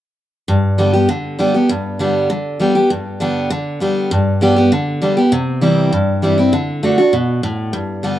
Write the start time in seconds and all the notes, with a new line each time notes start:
0.48 G2
0.78 D3 G3 B3 G4
0.93 B3 G4
1.09 D3
1.39 D3 G3 B3 G4
1.54 B3 G4
1.69 G2
1.99 D3 G3 B3 G4
2.30 D3
2.60 D3 G3 B3 G4
2.75 B3 G4
2.90 G2
3.20 D3 G3 B3 G4
3.50 D3
3.80 D3 G3 B3 G4
4.11 G2
4.41 D3 G3 B3 G4
4.56 B3 G4
4.72 D3
5.02 D3 G3 B3 G4
5.17 B3 G4
5.32 C3
5.61 E3 G3 C4 E4
5.93 G2
6.22 E3 G3 C4 E4
6.38 C4 E4
6.53 D3
6.83 D3 A3 D4 F#4
6.98 D4 F#4
7.13 B2
7.43 A2
7.73 G2
8.03 D3 G3 B3 G4